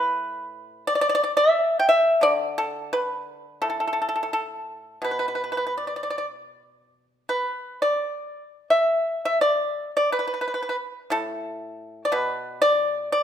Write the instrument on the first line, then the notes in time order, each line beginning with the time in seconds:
pipa
Already playing: A2 B4
0.87 D5
0.95 D5
1.01 D5
1.09 D5
1.15 D5
1.24 D5
1.37 E5
1.79 G5
1.89 E5
2.21 D3 D5
2.58 A4
2.93 B4
3.36 A4
3.62 A2 A4
3.70 A4
3.80 A4
3.88 A4
3.93 A4
4.02 A4
4.09 A4
4.16 A4
4.23 A4
4.33 A4
5.02 B2 B4
5.11 B4
5.19 B4
5.28 B4
5.35 B4
5.44 B4
5.52 B4
5.57 B4
5.67 B4
5.78 D5
5.87 D5
5.96 D5
6.03 D5
6.10 D5
6.18 D5
7.29 B4
7.82 D5
8.70 E5
9.25 E5
9.41 D5
9.97 D5
10.12 B4
10.19 B4
10.27 B4
10.34 B4
10.41 B4
10.48 B4
10.54 B4
10.62 B4
10.69 B4
11.10 A2 A4
12.05 D5
12.12 B2 B4
12.62 D5
13.12 D5